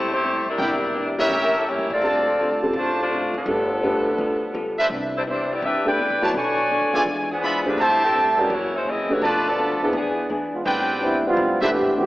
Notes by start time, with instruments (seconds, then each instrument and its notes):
Already playing: upright bass E1, hollow-body jazz guitar A2 G3 C4 E4, saxophone section A3 E4 G4 C5
0.13 saxophone section A3 E4 G4 C5
0.22 hollow-body jazz guitar A2 G3 C4 E4
0.46 saxophone section G3 D4 E4 A#4, muted upright bass stroke
0.58 upright bass E1, upright piano D3 G3 C4 E4, hollow-body jazz guitar E3 A#3 D4 G4, trumpet section E4 A#4 D5 G5
0.95 hollow-body jazz guitar E3 A#3 D4 G4
1.18 upright piano G3 A#3 C#4 E4, trumpet section G4 A#4 C#5 E5, saxophone section B4
1.26 upright bass A1, saxophone section A#4
1.31 hollow-body jazz guitar A2 G3 A#3 C#4, saxophone section G4
1.43 saxophone section A#4
1.57 saxophone section G3 C#4 E4 A4
1.68 hollow-body jazz guitar A2 G3 A#3 C#4, saxophone section A#3 E4 G4 C#5
1.78 upright bass E2
1.90 upright bass A2, saxophone section C4 F4 A4 D5
2.02 upright bass D2, hollow-body jazz guitar D3 A3 C4 F4, upright piano G3 C4 F4 A4, trumpet section F4 C5 D5 A5
2.40 hollow-body jazz guitar D3 A3 C4 F4
2.63 upright piano G3 C4 F4 A4
2.73 upright bass A1, hollow-body jazz guitar D3 A3 C4 F4, saxophone section A3 D4
2.77 saxophone section F4 C5
3.00 saxophone section A3 D4 F4 C5
3.10 hollow-body jazz guitar D3 A3 C4 F4
3.34 upright bass F#1, saxophone section F3 B3 D4 A4
3.46 upright bass G1, hollow-body jazz guitar G3 B3 F4 A4, upright piano A3 D4 G4 B4
3.82 hollow-body jazz guitar G3 B3 F4 A4, upright piano A3 D4 G4 B4
4.18 upright bass D2, hollow-body jazz guitar G3 B3 F4 A4
4.54 upright bass C#2, hollow-body jazz guitar G3 B3 F4 A4
4.78 trumpet section D4 B4 C5 E5
4.90 upright bass C2, hollow-body jazz guitar C3 E3 B3 D4
5.17 saxophone section G3 D4 E4 C5
5.27 hollow-body jazz guitar C3 E3 B3 D4, saxophone section G3 D4 E4 C5
5.52 saxophone section B3 E4 G4 D5
5.62 upright bass G1, hollow-body jazz guitar C3 E3 B3 D4, saxophone section D4 G4 B4 E5
5.85 upright piano A3 D4 G4 B4, saxophone section E4 B4 D5 G5
5.98 hollow-body jazz guitar C3 E3 B3 D4
6.10 upright bass D2
6.21 upright bass F#2, upright piano F#3 B3 E4 B4, trumpet section D4 B4 C#5 A5
6.33 upright bass B1, hollow-body jazz guitar B3 D4 A4 C#5, saxophone section F#4 C#5 D5 G#5
6.71 hollow-body jazz guitar B3 D4 A4 C#5
6.81 upright bass D2
6.93 upright bass F2, upright piano B3 D4 F4 G#4, trumpet section F4 D5 E5 G#5
7.05 upright bass E2, hollow-body jazz guitar E3 G#3 D4 F4
7.32 saxophone section F3 B3 D4 G#4
7.43 hollow-body jazz guitar E3 G#3 D4 F4, trumpet section F4 D5 E5 B5
7.65 saxophone section G#3 D4 F4 B4, upright piano A3 D4 G4 C5
7.78 upright bass A1, hollow-body jazz guitar A2 G3 C4 E4, saxophone section A3 E4 G4 C5, trumpet section G4 C5 E5 A5
8.03 saxophone section C4 G4 A4 E5
8.14 hollow-body jazz guitar A2 G3 C4 E4
8.37 upright piano G#3 C#4 F#4 A#4, saxophone section B3 E4 G4 D5
8.50 upright bass F#1, hollow-body jazz guitar F#2 E3 A#3 C#4, saxophone section A#3 E4 F#4 C#5
8.76 saxophone section G#3 C#4 E4 C5
8.84 hollow-body jazz guitar F#2 E3 A#3 C#4
8.89 saxophone section C4 E4 G#4 D#5
9.09 upright piano A3 D4 G4 B4, saxophone section A#3 E4 F#4 C#5
9.22 upright bass B1, hollow-body jazz guitar B2 F3 A3 D4, saxophone section A3 D4 F4 B4, trumpet section F4 B4 D5 A5
9.47 saxophone section F3 B3 D4 A4
9.58 hollow-body jazz guitar B2 F3 A3 D4
9.80 saxophone section F3 B3 D4 A4, upright piano B3 D4 E4 G#4, muted upright bass stroke
9.93 upright bass E2, hollow-body jazz guitar E3 B3 D4 G#4, saxophone section E3 B3 D4 G#4
10.30 upright bass E2, hollow-body jazz guitar E3 B3 D4 G#4
10.53 trombone section G#3 B3 D4 F4
10.64 upright bass A1, hollow-body jazz guitar A2 G3 C4 D4, trombone section G3 B3 C4 D4, trumpet section C4 D4 B4 G5
11.00 hollow-body jazz guitar A2 G3 C4 D4, trombone section G3 B3 C4 E4
11.24 trombone section G3 B3 C4 F4, muted upright bass stroke
11.36 upright bass E1, hollow-body jazz guitar A2 G3 C4 D4
11.60 trombone section E3 B3 C4 G4, upright piano A3 D4 G4 B4, trumpet section D4 B4 C5 E5
11.72 hollow-body jazz guitar A2 G3 C4 D4
11.97 upright piano E3 A3 D4 F#4, trombone section E3 B3 C4 G4